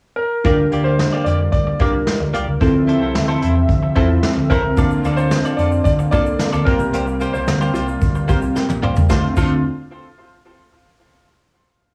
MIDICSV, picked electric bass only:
0, 0, Header, 1, 2, 480
1, 0, Start_track
1, 0, Key_signature, -1, "minor"
1, 0, Tempo, 540541
1, 399, Time_signature, 4, 2, 24, 8
1, 10606, End_track
2, 0, Start_track
2, 0, Title_t, "Picked electric bass"
2, 0, Program_c, 0, 34
2, 398, Note_on_c, 0, 38, 91
2, 578, Note_off_c, 0, 38, 0
2, 636, Note_on_c, 0, 38, 96
2, 907, Note_off_c, 0, 38, 0
2, 1115, Note_on_c, 0, 41, 80
2, 1296, Note_off_c, 0, 41, 0
2, 1356, Note_on_c, 0, 38, 82
2, 1537, Note_off_c, 0, 38, 0
2, 1600, Note_on_c, 0, 36, 87
2, 1779, Note_off_c, 0, 36, 0
2, 1954, Note_on_c, 0, 38, 81
2, 2046, Note_off_c, 0, 38, 0
2, 2070, Note_on_c, 0, 36, 82
2, 2163, Note_off_c, 0, 36, 0
2, 2195, Note_on_c, 0, 37, 81
2, 2286, Note_off_c, 0, 37, 0
2, 2316, Note_on_c, 0, 38, 103
2, 2587, Note_off_c, 0, 38, 0
2, 2679, Note_on_c, 0, 36, 78
2, 2769, Note_off_c, 0, 36, 0
2, 2801, Note_on_c, 0, 38, 88
2, 2980, Note_off_c, 0, 38, 0
2, 3040, Note_on_c, 0, 40, 88
2, 3219, Note_off_c, 0, 40, 0
2, 3276, Note_on_c, 0, 38, 91
2, 3457, Note_off_c, 0, 38, 0
2, 3520, Note_on_c, 0, 40, 95
2, 3699, Note_off_c, 0, 40, 0
2, 3873, Note_on_c, 0, 38, 81
2, 3965, Note_off_c, 0, 38, 0
2, 4001, Note_on_c, 0, 36, 85
2, 4090, Note_off_c, 0, 36, 0
2, 4117, Note_on_c, 0, 37, 76
2, 4208, Note_off_c, 0, 37, 0
2, 4240, Note_on_c, 0, 38, 99
2, 4419, Note_off_c, 0, 38, 0
2, 4476, Note_on_c, 0, 38, 101
2, 4747, Note_off_c, 0, 38, 0
2, 4955, Note_on_c, 0, 41, 97
2, 5136, Note_off_c, 0, 41, 0
2, 5197, Note_on_c, 0, 38, 95
2, 5378, Note_off_c, 0, 38, 0
2, 5440, Note_on_c, 0, 36, 94
2, 5619, Note_off_c, 0, 36, 0
2, 5798, Note_on_c, 0, 38, 85
2, 5889, Note_off_c, 0, 38, 0
2, 5920, Note_on_c, 0, 36, 91
2, 6010, Note_off_c, 0, 36, 0
2, 6036, Note_on_c, 0, 35, 82
2, 6127, Note_off_c, 0, 35, 0
2, 6155, Note_on_c, 0, 36, 96
2, 6426, Note_off_c, 0, 36, 0
2, 6517, Note_on_c, 0, 36, 88
2, 6607, Note_off_c, 0, 36, 0
2, 6635, Note_on_c, 0, 38, 88
2, 6817, Note_off_c, 0, 38, 0
2, 6872, Note_on_c, 0, 36, 91
2, 7055, Note_off_c, 0, 36, 0
2, 7119, Note_on_c, 0, 38, 99
2, 7363, Note_on_c, 0, 36, 89
2, 7376, Note_off_c, 0, 38, 0
2, 7541, Note_off_c, 0, 36, 0
2, 7716, Note_on_c, 0, 34, 84
2, 7807, Note_off_c, 0, 34, 0
2, 7836, Note_on_c, 0, 36, 84
2, 7927, Note_off_c, 0, 36, 0
2, 7955, Note_on_c, 0, 37, 87
2, 8046, Note_off_c, 0, 37, 0
2, 8080, Note_on_c, 0, 38, 89
2, 8213, Note_off_c, 0, 38, 0
2, 8320, Note_on_c, 0, 38, 96
2, 8542, Note_off_c, 0, 38, 0
2, 10606, End_track
0, 0, End_of_file